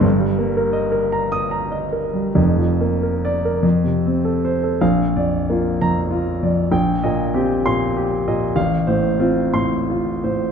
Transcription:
0.00 2.32 G1 medium
0.00 2.32 G2 medium
0.19 0.48 G3 soft
0.39 0.67 A#3 medium
0.57 0.86 A#4 medium
0.73 1.04 D#5 medium
0.92 1.24 A#4 medium
1.12 1.44 A#5 medium
1.32 1.64 D#6 medium
1.51 1.85 A#5 medium
1.72 2.06 D#5 medium
1.92 2.28 A#4 soft
2.13 2.36 G3 soft
2.35 3.59 F1 medium
2.35 3.59 F2 medium
2.58 2.93 F3 soft
2.81 3.15 A#3 soft
3.03 3.36 A#4 soft
3.25 3.56 D5 medium
3.45 3.65 A#4 soft
3.63 4.77 F2 medium
3.84 4.16 C3 soft
4.06 4.37 C4 soft
4.25 4.57 A4 soft
4.45 4.75 C5 medium
4.63 4.81 A4 soft
4.81 6.70 A#1 medium
4.81 5.35 F5 medium
5.16 5.69 F2 soft
5.16 5.69 D5 medium
5.50 6.00 A#3 soft
5.50 6.01 F4 soft
5.81 6.31 F2 soft
5.81 6.31 A#5 medium
6.11 6.61 F4 soft
6.43 6.73 F2 soft
6.43 6.73 D5 soft
6.72 8.50 A#1 medium
6.72 7.20 G5 medium
7.04 7.52 A#2 medium
7.04 7.51 D#5 medium
7.34 7.82 C4 medium
7.34 7.82 G4 medium
7.66 8.13 A#2 medium
7.66 8.13 C6 medium
7.97 8.44 G4 medium
8.28 8.57 A#2 soft
8.28 8.57 D#5 soft
8.56 10.52 A1 medium
8.56 9.06 F5 medium
8.87 9.39 A2 medium
8.87 9.39 C5 medium
9.20 9.74 C4 medium
9.20 9.74 F4 medium
9.53 10.08 A2 soft
9.53 10.08 C6 medium
9.90 10.44 F4 soft
10.24 10.52 A2 soft
10.24 10.52 C5 soft

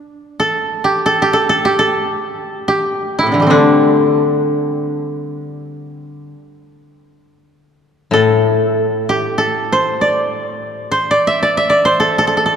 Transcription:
0.00 0.70 D4 soft
0.40 1.05 A4 medium
0.84 1.22 G4 medium
1.06 1.33 A4 medium
1.22 1.65 G4 medium
1.33 1.49 A4 medium
1.49 1.78 A4 medium
1.65 2.68 G4 medium
1.79 3.69 A4 medium
2.68 4.72 G4 medium
3.19 5.45 E4 medium
3.23 3.46 A2 soft
3.27 3.57 C3 soft
3.32 3.53 D3 soft
3.32 3.57 E3 soft
3.40 6.49 G3 soft
3.40 6.31 A3 soft
3.47 6.32 D3 soft
3.47 6.07 C4 soft
3.47 5.93 D4 soft
8.11 10.89 A2 soft
8.11 9.38 A4 medium
9.09 11.13 G4 medium
9.38 11.28 A4 medium
9.72 10.56 C5 medium
10.01 10.56 D5 medium
10.56 10.92 C5 medium
10.92 11.85 C5 medium
11.11 11.42 D5 medium
11.27 11.57 E5 medium
11.43 11.69 D5 medium
11.57 12.56 E5 medium
11.70 12.56 D5 medium
11.85 12.56 C5 medium
12.00 12.18 A4 medium
12.18 12.27 A4 medium
12.27 12.37 A4 soft
12.37 12.45 A4 soft
12.46 12.56 A4 soft

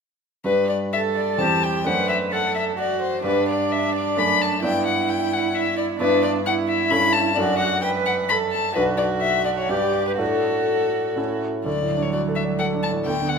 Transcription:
0.44 1.36 G2 soft
0.44 1.37 G3 soft
0.44 1.37 D4 soft
0.44 0.68 B4 medium
0.44 1.37 B4 soft
0.69 0.77 D5 soft
0.93 1.42 A4 soft
0.93 1.01 E5 medium
1.16 1.41 D5 medium
1.38 1.83 E2 soft
1.38 1.84 G3 soft
1.38 1.84 C4 soft
1.38 1.86 G4 soft
1.38 1.84 C5 soft
1.38 1.65 A5 medium
1.63 1.88 G5 medium
1.84 3.21 F#2 soft
1.84 3.21 A3 soft
1.84 3.21 D4 soft
1.84 2.33 B4 soft
1.84 3.22 C5 soft
1.84 2.09 F#5 medium
2.09 2.17 E5 soft
2.32 2.78 A4 soft
2.32 2.55 F#5 medium
2.55 2.63 E5 soft
2.79 3.25 F#4 soft
2.79 3.02 D5 medium
3.03 3.25 C5 medium
3.24 4.14 G2 soft
3.24 4.14 G3 soft
3.24 4.14 D4 soft
3.24 4.61 D4 soft
3.24 4.14 B4 soft
3.24 3.48 B4 medium
3.49 3.74 D5 medium
3.73 3.95 E5 medium
3.96 4.20 D5 medium
4.16 4.61 F#2 soft
4.16 4.61 A3 soft
4.16 4.62 D4 soft
4.16 4.62 D5 soft
4.16 4.43 B5 medium
4.42 4.63 A5 medium
4.63 5.96 G2 soft
4.63 5.96 B3 soft
4.63 5.97 D4 soft
4.63 5.98 E4 soft
4.63 5.97 D5 soft
4.63 4.86 G5 medium
4.87 5.12 F#5 medium
5.10 5.35 G5 medium
5.33 5.57 F#5 medium
5.55 5.77 E5 medium
5.78 5.86 D5 medium
6.00 6.88 G2 soft
6.00 6.89 B3 soft
6.00 6.45 D4 soft
6.00 6.89 E4 soft
6.00 6.23 B4 medium
6.00 6.89 D5 soft
6.24 6.32 D5 medium
6.46 7.36 E4 medium
6.46 6.54 F#5 medium
6.68 6.92 E5 medium
6.91 7.36 G2 soft
6.91 7.36 C#4 soft
6.91 7.36 E4 soft
6.91 7.36 A4 soft
6.91 7.15 B5 medium
7.13 7.37 A5 medium
7.36 8.73 F#2 soft
7.36 8.73 D4 soft
7.36 8.73 F#4 soft
7.36 7.83 F#4 medium
7.36 8.73 A4 soft
7.36 7.59 D5 medium
7.59 7.81 F#5 medium
7.82 8.32 B4 medium
7.82 7.90 G5 medium
8.06 8.14 F#5 medium
8.29 8.77 A4 soft
8.29 8.37 B5 medium
8.52 8.74 A5 medium
8.75 9.67 B1 soft
8.75 9.68 D4 soft
8.75 9.68 F#4 soft
8.75 9.72 F#4 medium
8.75 8.83 B4 medium
8.75 9.68 B4 soft
8.98 9.06 D5 medium
9.21 9.45 E5 medium
9.46 9.51 D5 medium
9.58 9.70 C#5 medium
9.69 10.17 G2 soft
9.69 10.16 D4 soft
9.69 10.18 G4 soft
9.69 10.19 G4 soft
9.69 10.18 B4 soft
9.69 10.06 D5 medium
10.07 10.12 B4 soft
10.17 11.14 A2 soft
10.17 11.14 D4 soft
10.17 11.14 F#4 soft
10.17 11.40 F#4 soft
10.17 11.39 A4 medium
10.17 11.15 A4 soft
11.16 11.64 A2 soft
11.16 11.64 C#4 soft
11.16 11.64 E4 soft
11.16 11.65 A4 soft
11.66 13.02 D2 soft
11.66 13.02 F#3 soft
11.66 12.04 D5 soft
11.82 12.07 A2 soft
11.97 12.22 D4 soft
12.02 12.12 C#5 soft
12.13 12.38 F#4 soft
12.13 12.21 D5 medium
12.28 12.53 A4 soft
12.36 12.44 E5 soft
12.45 12.69 D5 soft
12.59 12.84 A4 soft
12.59 12.67 F#5 medium
12.74 13.00 D4 soft
12.83 12.91 A5 medium
12.91 13.06 A2 soft
13.06 13.39 D2 soft
13.06 13.39 B3 soft
13.06 13.31 G5 medium
13.22 13.39 D3 soft
13.29 13.39 F#5 medium

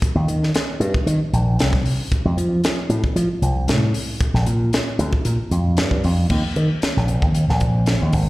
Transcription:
0.02 muted slap bass stroke soft
0.02 kick loud
0.02 closed hi-hat medium
0.15 0.26 D#2 medium
0.28 0.51 D#3 medium
0.28 closed hi-hat medium
0.43 snare soft
0.54 snare loud
0.54 closed hi-hat medium
0.80 0.92 G2 medium
0.80 closed hi-hat medium
0.94 kick medium
1.06 1.18 D#3 medium
1.06 closed hi-hat medium
1.33 1.59 A#1 medium
1.33 closed hi-hat medium
1.59 1.82 C2 medium
1.59 snare loud
1.59 closed hi-hat medium
1.73 kick medium
1.73 snare soft
1.85 open hi-hat medium
2.12 muted slap bass stroke soft
2.12 kick medium
2.12 closed hi-hat medium
2.25 2.36 F2 medium
2.37 2.60 F3 medium
2.37 closed hi-hat medium
2.64 snare loud
2.64 closed hi-hat medium
2.89 3.01 A2 medium
2.89 closed hi-hat medium
3.04 kick medium
3.16 3.28 F3 medium
3.16 closed hi-hat medium
3.42 3.69 C2 medium
3.42 closed hi-hat medium
3.68 3.91 A2 medium
3.68 snare loud
3.68 closed hi-hat medium
3.94 open hi-hat medium
4.20 muted slap bass stroke soft
4.20 kick loud
4.20 closed hi-hat medium
4.34 4.45 A#1 medium
4.34 snare soft
4.46 4.69 A#2 medium
4.46 closed hi-hat medium
4.73 snare loud
4.73 closed hi-hat medium
4.99 5.11 D2 medium
4.99 closed hi-hat medium
5.13 kick medium
5.25 5.37 A#2 medium
5.25 closed hi-hat medium
5.51 5.77 F2 medium
5.51 closed hi-hat medium
5.77 6.01 G2 medium
5.77 snare loud
5.77 closed hi-hat medium
5.91 kick medium
6.04 6.28 F2 medium
6.04 open hi-hat medium
6.30 6.42 D#2 medium
6.30 kick medium
6.30 crash medium
6.56 6.68 D#3 medium
6.56 closed hi-hat medium
6.82 muted slap bass stroke soft
6.82 snare loud
6.82 closed hi-hat medium
6.97 7.23 A#1 medium
6.97 snare soft
7.08 closed hi-hat medium
7.22 7.45 D#2 medium
7.22 kick medium
7.35 closed hi-hat medium
7.49 7.95 A#1 medium
7.49 snare soft
7.60 kick medium
7.60 closed hi-hat medium
7.86 snare medium
7.86 closed hi-hat medium
8.02 8.12 D#2 medium
8.13 8.29 G#1 medium
8.13 kick medium
8.13 open hi-hat medium

